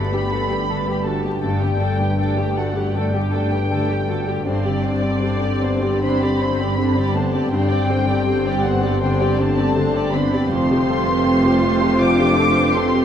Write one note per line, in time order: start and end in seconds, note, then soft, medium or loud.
0.00 1.40 G1 medium
0.00 1.40 G2 soft
0.00 1.43 G2 soft
0.00 1.44 G2 medium
0.00 0.24 D3 soft
0.00 0.68 D3 soft
0.00 0.87 G3 soft
0.00 0.11 A3 soft
0.00 0.86 A3 soft
0.00 1.06 B3 medium
0.00 0.11 D4 soft
0.00 0.50 D4 soft
0.00 1.07 F#4 soft
0.00 0.13 G4 soft
0.00 0.31 G4 soft
0.00 0.12 A4 soft
0.00 0.32 A4 soft
0.00 0.52 B4 soft
0.00 2.56 D5 soft
0.00 3.64 A5 soft
0.00 1.05 B5 medium
0.13 0.32 G3 soft
0.13 0.30 A3 soft
0.13 0.43 G4 soft
0.13 0.32 G4 soft
0.13 2.37 A4 soft
0.31 0.49 A3 soft
0.31 0.50 D4 soft
0.31 2.18 G4 soft
0.31 0.51 A4 soft
0.31 0.62 A4 soft
0.50 0.69 G3 soft
0.50 0.68 A3 soft
0.50 1.99 D4 soft
0.50 0.69 G4 soft
0.50 0.70 B4 soft
0.68 1.05 D3 soft
0.68 0.86 A3 soft
0.68 0.86 D4 soft
0.68 0.87 A4 soft
0.68 0.99 A4 soft
0.87 1.06 G3 soft
0.87 1.05 A3 soft
0.87 1.24 A3 soft
0.87 1.18 G4 soft
0.87 1.06 G4 soft
1.05 1.62 D3 soft
1.05 1.22 A3 soft
1.05 1.44 A3 medium
1.05 1.24 D4 soft
1.05 1.25 F#4 soft
1.05 1.25 A4 soft
1.05 1.43 A5 medium
1.23 1.43 G3 soft
1.23 1.41 A3 soft
1.23 1.81 A3 soft
1.23 1.43 G4 soft
1.23 1.55 G4 soft
1.42 4.42 G1 medium
1.42 4.42 G2 medium
1.42 2.92 G2 medium
1.42 4.45 G2 soft
1.42 2.57 G3 medium
1.42 1.60 A3 soft
1.42 1.60 D4 soft
1.42 1.61 A4 soft
1.42 2.55 G5 medium
1.61 3.70 D3 soft
1.61 1.81 G3 soft
1.61 1.79 A3 soft
1.61 1.92 D4 soft
1.61 1.81 G4 soft
1.80 1.98 A3 soft
1.80 3.89 A3 soft
1.80 2.00 D4 soft
1.80 2.11 A4 soft
1.80 2.00 A4 soft
1.99 2.18 G3 soft
1.99 2.16 A3 soft
1.99 3.51 D4 soft
1.99 2.19 G4 soft
1.99 2.19 B4 soft
2.17 2.36 A3 soft
2.17 2.36 D4 soft
2.17 3.32 G4 soft
2.17 2.49 A4 soft
2.17 2.37 A4 soft
2.37 2.57 G3 soft
2.37 2.56 A3 soft
2.37 2.68 G4 soft
2.37 2.57 G4 soft
2.37 3.13 A4 soft
2.56 2.94 G3 medium
2.56 2.74 A3 soft
2.56 2.76 D4 soft
2.56 2.76 F#4 soft
2.56 2.77 A4 soft
2.56 2.94 D5 soft
2.56 2.95 F#5 medium
2.76 2.95 G3 soft
2.76 2.94 A3 soft
2.76 3.07 G4 soft
2.76 2.96 G4 soft
2.95 3.26 D3 soft
2.95 4.46 G3 medium
2.95 3.13 A3 medium
2.95 3.13 D4 soft
2.95 3.14 A4 soft
2.95 6.85 D5 soft
2.95 4.46 G5 medium
3.14 3.33 G3 soft
3.14 3.32 A3 soft
3.14 3.33 G4 soft
3.14 3.45 G4 soft
3.14 4.49 A4 soft
3.33 3.50 A3 soft
3.33 3.52 D4 soft
3.33 5.21 G4 soft
3.33 3.52 A4 soft
3.33 3.64 A4 soft
3.51 3.71 G3 soft
3.51 3.70 A3 soft
3.51 7.42 D4 soft
3.51 3.71 G4 soft
3.51 3.71 B4 soft
3.71 4.07 D3 soft
3.71 3.89 A3 soft
3.71 3.88 D4 soft
3.71 4.01 A4 soft
3.71 3.89 A4 soft
3.89 4.09 G3 soft
3.89 4.08 A3 soft
3.89 4.27 A3 soft
3.89 4.08 G4 soft
3.89 4.20 G4 soft
4.08 4.49 D3 soft
4.08 4.28 A3 soft
4.08 4.28 D4 soft
4.08 4.27 F#4 soft
4.08 4.28 A4 soft
4.27 4.47 G3 soft
4.27 4.49 A3 soft
4.27 4.47 A3 soft
4.27 4.46 G4 soft
4.45 7.48 G1 medium
4.45 7.48 G2 medium
4.45 5.98 G2 medium
4.45 7.51 G2 medium
4.45 5.99 D3 medium
4.45 4.64 D3 soft
4.45 4.64 C4 medium
4.45 4.64 D4 soft
4.45 4.64 C5 soft
4.45 6.02 D5 medium
4.64 6.77 D3 soft
4.64 4.84 G3 soft
4.64 4.84 C4 soft
4.64 4.83 G4 soft
4.64 4.95 G4 soft
4.64 4.83 D5 soft
4.83 5.03 D3 soft
4.83 6.58 G3 soft
4.83 5.02 C4 soft
4.83 5.14 C4 soft
4.83 5.03 D4 soft
4.83 5.02 C5 soft
5.02 5.22 G3 soft
5.02 5.41 C4 soft
5.02 5.22 C4 soft
5.02 5.22 D4 soft
5.02 5.22 G4 soft
5.02 5.22 D5 soft
5.20 5.41 D3 soft
5.20 5.39 C4 soft
5.20 5.41 D4 soft
5.20 6.21 G4 soft
5.20 5.54 G4 soft
5.20 5.39 C5 medium
5.41 5.63 G3 soft
5.41 5.74 C4 soft
5.41 6.40 C4 soft
5.41 5.63 C4 soft
5.41 5.62 G4 soft
5.41 5.62 D5 soft
5.61 5.83 D3 soft
5.61 5.83 B3 soft
5.61 5.82 C4 soft
5.61 5.83 D4 soft
5.61 5.82 C5 soft
5.61 6.02 C5 soft
5.81 6.03 G3 soft
5.81 6.03 C4 soft
5.81 6.02 G4 soft
5.81 6.14 G4 soft
5.81 6.02 D5 soft
6.01 6.33 D3 soft
6.01 6.21 D3 medium
6.01 7.15 C4 medium
6.01 6.21 C4 soft
6.01 6.21 D4 medium
6.01 8.63 C5 soft
6.01 6.21 C5 medium
6.01 7.13 B5 medium
6.22 6.41 G3 soft
6.22 6.41 C4 soft
6.22 6.41 G4 soft
6.22 8.25 G4 soft
6.22 6.52 G4 soft
6.22 6.41 D5 soft
6.40 6.60 D3 soft
6.40 6.59 C4 soft
6.40 8.06 C4 soft
6.40 6.71 C4 soft
6.40 6.60 D4 soft
6.40 6.59 C5 soft
6.60 6.96 G3 soft
6.60 6.79 G3 soft
6.60 6.79 C4 soft
6.60 6.78 D4 soft
6.60 6.78 G4 medium
6.60 6.78 D5 soft
6.78 7.14 D3 soft
6.78 6.96 D3 soft
6.78 6.95 C4 soft
6.78 6.96 D4 soft
6.78 7.08 G4 soft
6.78 6.95 C5 soft
6.95 7.33 G3 soft
6.95 7.16 G3 soft
6.95 7.26 C4 soft
6.95 7.15 C4 soft
6.95 7.15 G4 soft
6.95 7.14 D5 soft
7.14 7.70 D3 soft
7.14 7.34 D3 soft
7.14 7.52 A3 medium
7.14 7.34 B3 soft
7.14 7.34 C4 soft
7.14 7.34 D4 soft
7.14 7.34 C5 soft
7.14 7.52 A5 medium
7.33 7.88 G3 soft
7.33 7.53 G3 soft
7.33 7.53 C4 soft
7.33 7.52 G4 soft
7.33 7.64 G4 soft
7.33 7.52 D5 soft
7.51 10.47 G1 medium
7.51 8.97 G2 medium
7.51 10.54 G2 medium
7.51 10.47 G2 medium
7.51 7.70 D3 soft
7.51 8.61 G3 medium
7.51 7.69 C4 medium
7.51 7.70 D4 soft
7.51 7.69 C5 soft
7.51 8.62 G5 medium
7.69 9.75 D3 soft
7.69 7.90 G3 soft
7.69 8.01 C4 soft
7.69 7.89 C4 soft
7.69 7.89 G4 medium
7.69 7.88 D5 soft
7.87 8.08 D3 soft
7.87 9.56 G3 soft
7.87 8.07 C4 soft
7.87 8.09 D4 soft
7.87 8.19 G4 soft
7.87 8.07 C5 soft
8.07 8.27 G3 soft
8.07 8.44 C4 soft
8.07 8.27 C4 soft
8.07 8.26 G4 medium
8.07 8.26 A4 soft
8.07 8.26 D5 soft
8.26 8.45 D3 soft
8.26 8.44 C4 medium
8.26 8.45 D4 soft
8.26 9.19 G4 medium
8.26 8.57 G4 soft
8.26 8.44 C5 soft
8.45 8.64 G3 soft
8.45 9.37 C4 soft
8.45 8.76 C4 soft
8.45 8.64 C4 soft
8.45 8.64 G4 soft
8.45 8.64 D5 soft
8.63 8.83 D3 medium
8.63 8.99 G3 medium
8.63 8.83 B3 soft
8.63 8.83 C4 soft
8.63 8.83 D4 soft
8.63 9.00 C5 soft
8.63 8.83 C5 soft
8.63 9.01 F#5 medium
8.82 9.02 G3 soft
8.82 9.02 C4 soft
8.82 9.01 G4 soft
8.82 9.13 G4 soft
8.82 9.01 D5 medium
8.82 12.72 G5 medium
9.00 9.19 D3 medium
9.00 9.32 D3 soft
9.00 9.38 G3 medium
9.00 9.19 C4 soft
9.00 9.19 D4 medium
9.00 11.63 C5 medium
9.00 9.19 C5 soft
9.00 9.38 G5 medium
9.20 9.39 G3 soft
9.20 9.39 C4 soft
9.20 11.43 G4 medium
9.20 9.39 G4 soft
9.20 9.50 G4 soft
9.20 9.39 D5 soft
9.36 9.58 D3 medium
9.36 10.12 A3 medium
9.36 11.06 C4 soft
9.36 9.68 C4 medium
9.36 9.57 C4 medium
9.36 9.58 D4 medium
9.36 9.57 C5 soft
9.36 10.13 A5 medium
9.57 9.93 G3 soft
9.57 9.76 G3 soft
9.57 9.76 C4 soft
9.57 9.76 D4 soft
9.57 9.76 G4 medium
9.57 9.76 D5 medium
9.76 10.12 D3 medium
9.76 9.94 D3 medium
9.76 9.93 C4 soft
9.76 9.94 D4 medium
9.76 10.06 G4 soft
9.76 9.93 C5 soft
9.94 10.31 G3 soft
9.94 10.14 G3 medium
9.94 10.25 C4 soft
9.94 10.14 C4 soft
9.94 10.14 G4 medium
9.94 10.14 D5 soft
10.12 10.54 D3 soft
10.12 10.33 D3 soft
10.12 10.33 B3 soft
10.12 10.50 C4 medium
10.12 10.33 C4 soft
10.12 10.33 D4 soft
10.12 10.33 C5 medium
10.12 10.51 B5 medium
10.32 10.87 G3 soft
10.32 10.51 G3 soft
10.32 10.51 C4 soft
10.32 10.50 G4 medium
10.32 10.52 G4 soft
10.32 10.51 D5 soft
10.51 13.05 F1 medium
10.51 13.05 F2 medium
10.51 11.98 F2 medium
10.51 13.05 A3 medium
10.51 11.98 C4 medium
10.51 13.05 F4 medium
10.51 13.05 G4 medium
10.51 13.05 C5 medium
10.51 11.98 C6 loud
10.70 12.75 C3 soft
10.70 11.00 G4 soft
10.88 12.94 G3 medium
10.88 11.19 A4 medium
11.08 12.57 C4 medium
11.08 11.26 B4 soft
11.26 11.56 A4 soft
11.26 12.38 A4 medium
11.45 12.18 G4 medium
11.45 11.75 G4 soft
11.64 11.83 F4 soft
11.82 12.13 G4 soft
11.82 13.05 A5 medium
12.01 12.31 C3 medium
12.01 12.76 D4 medium
12.01 13.05 C5 medium
12.01 12.76 D6 loud
12.20 13.05 G4 medium
12.20 12.50 G4 medium
12.39 13.05 A4 medium
12.39 12.69 A4 medium
12.57 12.76 B4 soft
12.75 13.05 C3 medium
12.75 13.05 C4 medium
12.75 13.05 A4 medium
12.75 13.05 C6 medium
12.95 13.05 G3 medium
12.95 13.05 G4 soft